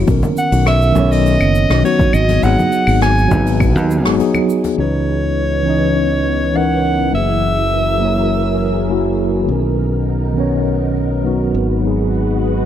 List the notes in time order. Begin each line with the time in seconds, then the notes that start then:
0.04 B1 D#3 B3, kick, open hi-hat, shaker
0.09 C#4 A#4
0.23 high conga, low conga, shaker
0.37 F#5, shaker
0.52 B1, open hi-hat, shaker
0.66 E5, cross-stick, open hi-hat, claves, shaker
0.82 shaker
0.92 B1 D#3 B3, high conga, low conga, shaker
0.97 C#4 C#5
1.12 D#5, open hi-hat, shaker
1.26 open hi-hat, shaker
1.40 F#1, claves, shaker
1.55 shaker
1.70 B1, cross-stick, open hi-hat, shaker
1.83 F#3 B3 D#4 F#4 C#5, open hi-hat, shaker
1.99 kick, high conga, low conga, shaker
2.13 G#1 D#5, claves, shaker
2.28 open hi-hat, high conga, shaker
2.40 G#1 F#3 B3 F#5, open hi-hat, shaker
2.44 D#4 G#4
2.58 high conga, low conga, shaker
2.72 shaker
2.87 G#1, open hi-hat, claves, shaker
3.01 G#5, cross-stick, open hi-hat, shaker
3.18 shaker
3.28 G#1 F#3 B3, kick, high conga, low conga, shaker
3.33 D#4 B4
3.46 open hi-hat, shaker
3.60 kick, open hi-hat, claves, shaker
3.76 D#2, shaker
3.91 shaker
4.04 G#1 F#3 B3 D#4 G#4, cross-stick, open hi-hat, shaker
4.18 F#3 B3 D#4 G#4, open hi-hat, shaker
4.34 high conga, claves, shaker
4.49 shaker
4.64 open hi-hat, high conga, shaker
4.75 C#2 C#3 E3 B3 C#4 D#4, shaker
4.79 D#4 B4 C#5
4.95 shaker
5.07 shaker
5.63 E3 C#4
5.68 D#4 D#5
6.53 E3 C#4 D#4 A#4 F#5
7.10 F#1 F#3 A#3 G#4 A#4
7.15 E4 G#4 E5
7.98 F#3 A#3
8.03 E4 C#5
8.88 F#3 A#3 E4 F#4
9.19 shaker
9.35 shaker
9.45 B1 D#3 B3 D#4 A#4
9.50 C#4 A#4, shaker
9.65 shaker
9.79 shaker
9.95 shaker
10.08 shaker
10.24 shaker
10.33 D#3 B3
10.38 C#4 C#5, shaker
10.53 shaker
10.67 shaker
10.83 shaker
10.96 shaker
11.12 shaker
11.24 F#3 B3 D#4 F#4, shaker
11.41 shaker
11.54 G#1 G#3 F#4 B4, shaker
11.70 shaker
11.81 F#3 B3, shaker
11.85 D#4 G#4
11.99 shaker
12.14 shaker
12.30 shaker
12.43 shaker
12.58 shaker